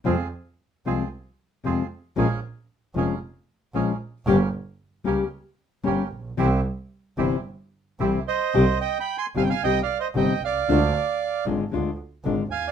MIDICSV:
0, 0, Header, 1, 5, 480
1, 0, Start_track
1, 0, Tempo, 528169
1, 49, Time_signature, 4, 2, 24, 8
1, 6288, Tempo, 537634
1, 9648, Tempo, 522193
1, 11517, End_track
2, 0, Start_track
2, 0, Title_t, "Bandoneon"
2, 0, Program_c, 0, 23
2, 7500, Note_on_c, 0, 72, 73
2, 7504, Note_on_c, 0, 75, 93
2, 7949, Note_off_c, 0, 72, 0
2, 7957, Note_off_c, 0, 75, 0
2, 7970, Note_on_c, 0, 75, 69
2, 7978, Note_on_c, 0, 79, 92
2, 8125, Note_off_c, 0, 75, 0
2, 8129, Note_off_c, 0, 79, 0
2, 8146, Note_on_c, 0, 79, 75
2, 8150, Note_on_c, 0, 83, 99
2, 8294, Note_off_c, 0, 79, 0
2, 8295, Note_off_c, 0, 83, 0
2, 8304, Note_on_c, 0, 80, 72
2, 8309, Note_on_c, 0, 84, 96
2, 8376, Note_off_c, 0, 80, 0
2, 8380, Note_off_c, 0, 84, 0
2, 8478, Note_on_c, 0, 77, 73
2, 8481, Note_on_c, 0, 80, 94
2, 8524, Note_on_c, 0, 79, 77
2, 8526, Note_off_c, 0, 77, 0
2, 8533, Note_off_c, 0, 80, 0
2, 8582, Note_off_c, 0, 79, 0
2, 8591, Note_on_c, 0, 77, 73
2, 8592, Note_on_c, 0, 80, 96
2, 8697, Note_off_c, 0, 77, 0
2, 8709, Note_off_c, 0, 80, 0
2, 8714, Note_on_c, 0, 79, 105
2, 8720, Note_on_c, 0, 75, 85
2, 8858, Note_off_c, 0, 75, 0
2, 8870, Note_off_c, 0, 79, 0
2, 8886, Note_on_c, 0, 77, 85
2, 8890, Note_on_c, 0, 74, 65
2, 9020, Note_off_c, 0, 77, 0
2, 9022, Note_off_c, 0, 74, 0
2, 9038, Note_on_c, 0, 75, 89
2, 9040, Note_on_c, 0, 72, 68
2, 9104, Note_off_c, 0, 75, 0
2, 9106, Note_off_c, 0, 72, 0
2, 9187, Note_on_c, 0, 79, 89
2, 9195, Note_on_c, 0, 75, 75
2, 9405, Note_off_c, 0, 75, 0
2, 9424, Note_off_c, 0, 79, 0
2, 9435, Note_on_c, 0, 77, 88
2, 9448, Note_on_c, 0, 74, 64
2, 10346, Note_off_c, 0, 77, 0
2, 10353, Note_off_c, 0, 74, 0
2, 11329, Note_on_c, 0, 80, 97
2, 11334, Note_on_c, 0, 77, 70
2, 11471, Note_off_c, 0, 77, 0
2, 11483, Note_on_c, 0, 74, 67
2, 11485, Note_on_c, 0, 77, 85
2, 11493, Note_off_c, 0, 80, 0
2, 11517, Note_off_c, 0, 74, 0
2, 11517, Note_off_c, 0, 77, 0
2, 11517, End_track
3, 0, Start_track
3, 0, Title_t, "Bandoneon"
3, 0, Program_c, 1, 23
3, 46, Note_on_c, 1, 65, 61
3, 49, Note_on_c, 1, 60, 62
3, 50, Note_on_c, 1, 68, 73
3, 253, Note_off_c, 1, 65, 0
3, 254, Note_off_c, 1, 60, 0
3, 255, Note_off_c, 1, 68, 0
3, 783, Note_on_c, 1, 60, 47
3, 785, Note_on_c, 1, 65, 40
3, 789, Note_on_c, 1, 68, 53
3, 984, Note_off_c, 1, 60, 0
3, 985, Note_off_c, 1, 65, 0
3, 987, Note_off_c, 1, 68, 0
3, 1500, Note_on_c, 1, 60, 49
3, 1500, Note_on_c, 1, 65, 47
3, 1505, Note_on_c, 1, 68, 55
3, 1701, Note_off_c, 1, 60, 0
3, 1701, Note_off_c, 1, 65, 0
3, 1703, Note_off_c, 1, 68, 0
3, 1977, Note_on_c, 1, 58, 76
3, 1979, Note_on_c, 1, 61, 68
3, 1981, Note_on_c, 1, 68, 81
3, 2180, Note_off_c, 1, 58, 0
3, 2181, Note_off_c, 1, 61, 0
3, 2181, Note_off_c, 1, 68, 0
3, 2699, Note_on_c, 1, 58, 53
3, 2700, Note_on_c, 1, 61, 47
3, 2701, Note_on_c, 1, 68, 56
3, 2897, Note_off_c, 1, 58, 0
3, 2897, Note_off_c, 1, 61, 0
3, 2898, Note_off_c, 1, 68, 0
3, 3405, Note_on_c, 1, 58, 57
3, 3405, Note_on_c, 1, 61, 52
3, 3408, Note_on_c, 1, 68, 65
3, 3607, Note_off_c, 1, 58, 0
3, 3607, Note_off_c, 1, 61, 0
3, 3608, Note_off_c, 1, 68, 0
3, 3874, Note_on_c, 1, 58, 77
3, 3877, Note_on_c, 1, 61, 73
3, 3880, Note_on_c, 1, 67, 82
3, 4080, Note_off_c, 1, 58, 0
3, 4081, Note_off_c, 1, 61, 0
3, 4083, Note_off_c, 1, 67, 0
3, 4598, Note_on_c, 1, 58, 53
3, 4599, Note_on_c, 1, 61, 48
3, 4604, Note_on_c, 1, 67, 59
3, 4803, Note_off_c, 1, 58, 0
3, 4803, Note_off_c, 1, 61, 0
3, 4806, Note_off_c, 1, 67, 0
3, 5322, Note_on_c, 1, 61, 53
3, 5324, Note_on_c, 1, 58, 59
3, 5325, Note_on_c, 1, 67, 70
3, 5527, Note_off_c, 1, 61, 0
3, 5528, Note_off_c, 1, 58, 0
3, 5529, Note_off_c, 1, 67, 0
3, 5797, Note_on_c, 1, 60, 82
3, 5800, Note_on_c, 1, 64, 82
3, 5804, Note_on_c, 1, 67, 99
3, 6004, Note_off_c, 1, 60, 0
3, 6006, Note_off_c, 1, 64, 0
3, 6007, Note_off_c, 1, 67, 0
3, 6518, Note_on_c, 1, 60, 60
3, 6519, Note_on_c, 1, 64, 52
3, 6520, Note_on_c, 1, 67, 63
3, 6723, Note_off_c, 1, 60, 0
3, 6724, Note_off_c, 1, 64, 0
3, 6724, Note_off_c, 1, 67, 0
3, 7251, Note_on_c, 1, 60, 58
3, 7251, Note_on_c, 1, 64, 55
3, 7254, Note_on_c, 1, 67, 67
3, 7461, Note_off_c, 1, 60, 0
3, 7461, Note_off_c, 1, 64, 0
3, 7463, Note_off_c, 1, 67, 0
3, 11517, End_track
4, 0, Start_track
4, 0, Title_t, "Nylon-string guitar"
4, 0, Program_c, 2, 24
4, 37, Note_on_c, 2, 48, 68
4, 43, Note_on_c, 2, 53, 72
4, 50, Note_on_c, 2, 56, 67
4, 51, Note_on_c, 2, 60, 73
4, 53, Note_on_c, 2, 65, 77
4, 125, Note_off_c, 2, 48, 0
4, 128, Note_off_c, 2, 53, 0
4, 132, Note_off_c, 2, 56, 0
4, 132, Note_off_c, 2, 60, 0
4, 133, Note_off_c, 2, 65, 0
4, 776, Note_on_c, 2, 48, 59
4, 779, Note_on_c, 2, 53, 60
4, 782, Note_on_c, 2, 60, 54
4, 783, Note_on_c, 2, 56, 53
4, 790, Note_on_c, 2, 65, 66
4, 931, Note_off_c, 2, 48, 0
4, 932, Note_off_c, 2, 53, 0
4, 934, Note_off_c, 2, 60, 0
4, 935, Note_off_c, 2, 56, 0
4, 938, Note_off_c, 2, 65, 0
4, 1487, Note_on_c, 2, 48, 56
4, 1492, Note_on_c, 2, 53, 61
4, 1496, Note_on_c, 2, 56, 59
4, 1503, Note_on_c, 2, 60, 58
4, 1504, Note_on_c, 2, 65, 65
4, 1645, Note_off_c, 2, 48, 0
4, 1648, Note_off_c, 2, 53, 0
4, 1650, Note_off_c, 2, 56, 0
4, 1654, Note_off_c, 2, 60, 0
4, 1654, Note_off_c, 2, 65, 0
4, 1961, Note_on_c, 2, 53, 74
4, 1966, Note_on_c, 2, 56, 78
4, 1975, Note_on_c, 2, 61, 87
4, 1979, Note_on_c, 2, 65, 81
4, 2051, Note_off_c, 2, 53, 0
4, 2054, Note_off_c, 2, 56, 0
4, 2058, Note_off_c, 2, 61, 0
4, 2060, Note_off_c, 2, 65, 0
4, 2680, Note_on_c, 2, 53, 63
4, 2686, Note_on_c, 2, 56, 59
4, 2698, Note_on_c, 2, 65, 72
4, 2699, Note_on_c, 2, 61, 62
4, 2839, Note_off_c, 2, 53, 0
4, 2842, Note_off_c, 2, 56, 0
4, 2848, Note_off_c, 2, 61, 0
4, 2848, Note_off_c, 2, 65, 0
4, 3401, Note_on_c, 2, 53, 62
4, 3404, Note_on_c, 2, 56, 68
4, 3407, Note_on_c, 2, 61, 66
4, 3411, Note_on_c, 2, 65, 64
4, 3556, Note_off_c, 2, 53, 0
4, 3557, Note_off_c, 2, 56, 0
4, 3559, Note_off_c, 2, 61, 0
4, 3561, Note_off_c, 2, 65, 0
4, 3879, Note_on_c, 2, 55, 87
4, 3882, Note_on_c, 2, 58, 86
4, 3889, Note_on_c, 2, 61, 98
4, 3890, Note_on_c, 2, 67, 98
4, 3962, Note_off_c, 2, 55, 0
4, 3963, Note_off_c, 2, 58, 0
4, 3967, Note_off_c, 2, 61, 0
4, 3967, Note_off_c, 2, 67, 0
4, 4582, Note_on_c, 2, 55, 67
4, 4583, Note_on_c, 2, 58, 62
4, 4591, Note_on_c, 2, 61, 75
4, 4595, Note_on_c, 2, 67, 73
4, 4745, Note_off_c, 2, 55, 0
4, 4746, Note_off_c, 2, 58, 0
4, 4750, Note_off_c, 2, 61, 0
4, 4752, Note_off_c, 2, 67, 0
4, 5303, Note_on_c, 2, 55, 71
4, 5303, Note_on_c, 2, 58, 72
4, 5305, Note_on_c, 2, 61, 67
4, 5311, Note_on_c, 2, 67, 75
4, 5468, Note_off_c, 2, 55, 0
4, 5468, Note_off_c, 2, 58, 0
4, 5469, Note_off_c, 2, 61, 0
4, 5472, Note_off_c, 2, 67, 0
4, 5791, Note_on_c, 2, 48, 87
4, 5793, Note_on_c, 2, 52, 92
4, 5796, Note_on_c, 2, 60, 83
4, 5801, Note_on_c, 2, 55, 93
4, 5805, Note_on_c, 2, 64, 106
4, 5880, Note_off_c, 2, 48, 0
4, 5881, Note_off_c, 2, 52, 0
4, 5882, Note_off_c, 2, 60, 0
4, 5885, Note_off_c, 2, 55, 0
4, 5887, Note_off_c, 2, 64, 0
4, 6515, Note_on_c, 2, 52, 75
4, 6518, Note_on_c, 2, 48, 74
4, 6519, Note_on_c, 2, 55, 72
4, 6522, Note_on_c, 2, 60, 77
4, 6531, Note_on_c, 2, 64, 78
4, 6672, Note_off_c, 2, 52, 0
4, 6673, Note_off_c, 2, 48, 0
4, 6674, Note_off_c, 2, 55, 0
4, 6675, Note_off_c, 2, 60, 0
4, 6680, Note_off_c, 2, 64, 0
4, 7251, Note_on_c, 2, 48, 68
4, 7251, Note_on_c, 2, 52, 74
4, 7259, Note_on_c, 2, 60, 72
4, 7260, Note_on_c, 2, 55, 78
4, 7261, Note_on_c, 2, 64, 75
4, 7411, Note_off_c, 2, 48, 0
4, 7411, Note_off_c, 2, 52, 0
4, 7415, Note_off_c, 2, 55, 0
4, 7415, Note_off_c, 2, 60, 0
4, 7416, Note_off_c, 2, 64, 0
4, 7732, Note_on_c, 2, 48, 77
4, 7739, Note_on_c, 2, 51, 78
4, 7744, Note_on_c, 2, 55, 80
4, 7746, Note_on_c, 2, 67, 88
4, 7748, Note_on_c, 2, 60, 89
4, 7819, Note_off_c, 2, 48, 0
4, 7822, Note_off_c, 2, 51, 0
4, 7825, Note_off_c, 2, 55, 0
4, 7826, Note_off_c, 2, 67, 0
4, 7827, Note_off_c, 2, 60, 0
4, 8460, Note_on_c, 2, 48, 64
4, 8463, Note_on_c, 2, 51, 65
4, 8466, Note_on_c, 2, 55, 70
4, 8471, Note_on_c, 2, 67, 71
4, 8473, Note_on_c, 2, 60, 69
4, 8613, Note_off_c, 2, 48, 0
4, 8614, Note_off_c, 2, 51, 0
4, 8616, Note_off_c, 2, 55, 0
4, 8618, Note_off_c, 2, 67, 0
4, 8619, Note_off_c, 2, 60, 0
4, 8709, Note_on_c, 2, 48, 64
4, 8716, Note_on_c, 2, 51, 58
4, 8721, Note_on_c, 2, 60, 63
4, 8726, Note_on_c, 2, 55, 63
4, 8729, Note_on_c, 2, 67, 61
4, 8856, Note_off_c, 2, 48, 0
4, 8859, Note_off_c, 2, 51, 0
4, 8862, Note_off_c, 2, 60, 0
4, 8864, Note_off_c, 2, 55, 0
4, 8865, Note_off_c, 2, 67, 0
4, 9173, Note_on_c, 2, 48, 71
4, 9175, Note_on_c, 2, 51, 67
4, 9175, Note_on_c, 2, 55, 65
4, 9183, Note_on_c, 2, 60, 65
4, 9184, Note_on_c, 2, 67, 75
4, 9324, Note_off_c, 2, 48, 0
4, 9325, Note_off_c, 2, 51, 0
4, 9325, Note_off_c, 2, 55, 0
4, 9328, Note_off_c, 2, 60, 0
4, 9329, Note_off_c, 2, 67, 0
4, 9649, Note_on_c, 2, 50, 81
4, 9655, Note_on_c, 2, 62, 95
4, 9658, Note_on_c, 2, 56, 103
4, 9663, Note_on_c, 2, 65, 101
4, 9730, Note_off_c, 2, 50, 0
4, 9733, Note_off_c, 2, 62, 0
4, 9734, Note_off_c, 2, 56, 0
4, 9737, Note_off_c, 2, 65, 0
4, 10362, Note_on_c, 2, 50, 68
4, 10366, Note_on_c, 2, 56, 72
4, 10370, Note_on_c, 2, 62, 74
4, 10372, Note_on_c, 2, 65, 85
4, 10519, Note_off_c, 2, 50, 0
4, 10521, Note_off_c, 2, 56, 0
4, 10523, Note_off_c, 2, 62, 0
4, 10523, Note_off_c, 2, 65, 0
4, 10597, Note_on_c, 2, 50, 65
4, 10599, Note_on_c, 2, 56, 70
4, 10610, Note_on_c, 2, 62, 73
4, 10617, Note_on_c, 2, 65, 76
4, 10756, Note_off_c, 2, 50, 0
4, 10757, Note_off_c, 2, 56, 0
4, 10763, Note_off_c, 2, 62, 0
4, 10766, Note_off_c, 2, 65, 0
4, 11090, Note_on_c, 2, 50, 71
4, 11098, Note_on_c, 2, 56, 71
4, 11098, Note_on_c, 2, 62, 72
4, 11107, Note_on_c, 2, 65, 73
4, 11241, Note_off_c, 2, 50, 0
4, 11245, Note_off_c, 2, 56, 0
4, 11245, Note_off_c, 2, 62, 0
4, 11250, Note_off_c, 2, 65, 0
4, 11517, End_track
5, 0, Start_track
5, 0, Title_t, "Double bass"
5, 0, Program_c, 3, 43
5, 48, Note_on_c, 3, 41, 83
5, 254, Note_off_c, 3, 41, 0
5, 782, Note_on_c, 3, 36, 53
5, 984, Note_off_c, 3, 36, 0
5, 1498, Note_on_c, 3, 41, 59
5, 1700, Note_off_c, 3, 41, 0
5, 1975, Note_on_c, 3, 34, 88
5, 2179, Note_off_c, 3, 34, 0
5, 2686, Note_on_c, 3, 29, 63
5, 2890, Note_off_c, 3, 29, 0
5, 3399, Note_on_c, 3, 34, 66
5, 3603, Note_off_c, 3, 34, 0
5, 3873, Note_on_c, 3, 31, 101
5, 4079, Note_off_c, 3, 31, 0
5, 4594, Note_on_c, 3, 37, 65
5, 4801, Note_off_c, 3, 37, 0
5, 5313, Note_on_c, 3, 31, 69
5, 5523, Note_off_c, 3, 31, 0
5, 5556, Note_on_c, 3, 34, 58
5, 5787, Note_off_c, 3, 34, 0
5, 5792, Note_on_c, 3, 36, 101
5, 6002, Note_off_c, 3, 36, 0
5, 6522, Note_on_c, 3, 31, 69
5, 6725, Note_off_c, 3, 31, 0
5, 7250, Note_on_c, 3, 36, 65
5, 7461, Note_off_c, 3, 36, 0
5, 7742, Note_on_c, 3, 36, 95
5, 7944, Note_off_c, 3, 36, 0
5, 8462, Note_on_c, 3, 31, 64
5, 8662, Note_off_c, 3, 31, 0
5, 8700, Note_on_c, 3, 36, 59
5, 8900, Note_off_c, 3, 36, 0
5, 9175, Note_on_c, 3, 31, 72
5, 9373, Note_off_c, 3, 31, 0
5, 9408, Note_on_c, 3, 36, 58
5, 9637, Note_off_c, 3, 36, 0
5, 9643, Note_on_c, 3, 38, 105
5, 9849, Note_off_c, 3, 38, 0
5, 10365, Note_on_c, 3, 32, 73
5, 10569, Note_off_c, 3, 32, 0
5, 10614, Note_on_c, 3, 38, 65
5, 10814, Note_off_c, 3, 38, 0
5, 11088, Note_on_c, 3, 32, 75
5, 11289, Note_off_c, 3, 32, 0
5, 11330, Note_on_c, 3, 39, 58
5, 11517, Note_off_c, 3, 39, 0
5, 11517, End_track
0, 0, End_of_file